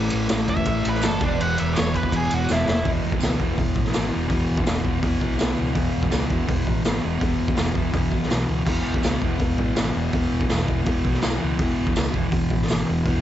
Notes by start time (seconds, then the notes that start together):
Already playing: A1 A2 E3 A3
0.10 A1, ride
0.29 A1, snare, ride, tambourine
0.48 E1 E5, kick, ride
0.57 kick
0.65 A1, kick, ride
0.85 A1, ride
0.89 B4
0.95 snare
1.02 F#1 A4, snare, ride, tambourine
1.18 E1 E2 B2, kick, ride
1.24 E3 D4
1.40 E1 F#5, ride
1.58 E1 E5, ride
1.74 C#5, snare, ride, tambourine
1.79 E1
1.94 E2 B4, kick, ride
2.03 kick
2.12 E1, kick, ride
2.17 G#4
2.31 E1 F#4, ride
2.49 E1 E4, snare, tambourine
2.67 E1 E4, snare
2.82 E1 E2 B2, kick, open hi-hat
2.87 E3
3.04 E1
3.12 kick
3.19 C#2 E2 B2, open hi-hat, tambourine
3.23 E3, snare
3.36 E3, kick
3.40 E1 B2
3.54 E2 B2, kick, open hi-hat
3.58 E1 E3
3.76 A1, kick
3.85 snare
3.91 E2 B2, snare, open hi-hat, tambourine
3.95 G#1 E3
4.09 E3
4.14 E1 B2
4.27 E1 E2 B2, kick, open hi-hat
4.31 E3
4.51 E1
4.58 kick
4.62 E2 B2
4.66 E1 E3, snare, open hi-hat, tambourine
4.80 E3
4.85 E1 B2, kick
5.00 E1 E2 B2, kick, open hi-hat
5.04 E3
5.21 B1, kick
5.36 E2 B2, tambourine
5.40 B1 E3, snare, open hi-hat
5.53 E3
5.58 C#2 B2
5.70 E2 B2
5.75 E1 E3, kick, open hi-hat
5.96 E1
6.03 kick
6.09 E2 B2, snare, open hi-hat, tambourine
6.13 C#2 E3
6.26 E3
6.30 E1 B2, kick
6.45 E2 B2, kick, open hi-hat
6.49 E1 E3
6.67 A1, kick
6.83 G#1 E2 B2, snare, open hi-hat, tambourine
6.88 E3
7.00 E3
7.04 E1 B2
7.17 E2 B2, kick, open hi-hat
7.22 E1 E3
7.40 E1
7.48 kick
7.55 E1 E2 B2, snare, open hi-hat, tambourine
7.61 E3
7.73 E1 E3, kick
7.77 B2
7.92 E1 E2 B2, kick, open hi-hat
7.97 E3
8.12 B1, kick
8.23 snare
8.28 B1 E2 B2, snare, open hi-hat, tambourine
8.33 E3
8.45 C#2 E3
8.50 B2
8.64 E1 E2 B2, kick, crash
8.68 E3
8.88 E1
8.94 kick
9.01 C#2 E2 B2, snare, open hi-hat, tambourine
9.06 E3
9.19 E1 E3, kick
9.24 B2
9.37 E1 E2 B2, kick, open hi-hat
9.42 E3
9.58 A1, kick
9.74 G#1 E2 B2, snare, open hi-hat, tambourine
9.79 E3
9.93 E1 E3
9.97 B2
10.11 E1 E2 B2, kick, open hi-hat
10.16 E3
10.32 E1
10.41 kick
10.47 E1 E2 B2, snare, open hi-hat, tambourine
10.52 E3
10.64 E3
10.68 E1 B2, kick
10.82 E2 B2, open hi-hat
10.87 E1 E3, kick
11.05 B1, kick
11.14 snare
11.20 E2 B2, snare, open hi-hat, tambourine
11.25 B1 E3
11.38 E3
11.43 C#2 B2
11.58 E1 E2 B2, kick, open hi-hat
11.63 E3
11.81 E1
11.87 kick
11.94 C#2 E2 B2, snare, open hi-hat, tambourine
11.98 E3
12.12 E1 E3, kick
12.17 B2
12.29 E1 E2 B2, kick, open hi-hat
12.35 E3
12.50 A1, kick
12.62 E2, snare
12.68 G#1 B2 E3, snare, open hi-hat, tambourine
12.86 E1 E3
12.91 B2
13.04 E1 E2 B2, kick, open hi-hat
13.09 E3